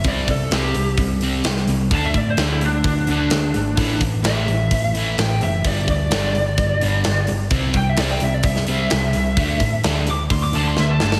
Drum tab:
HH |o-o-o-o-o-o-o-o-|o-o-o-o-o-o-o-o-|o-o-o-o-o-o-o-o-|o-o-o-o-o-o-o-o-|
SD |----o-------oo--|----o-------o---|----o-------o---|----o-------o---|
BD |o-o-----o-------|o-o-----o-------|o-o-----o-------|o-o-----o-------|

HH |o-o-o-o-o-o-o-o-|o-o-o-o-o-o-----|
SD |----o----o--o---|----o-------o-oo|
BD |o-o-----o-------|o-o-----o-------|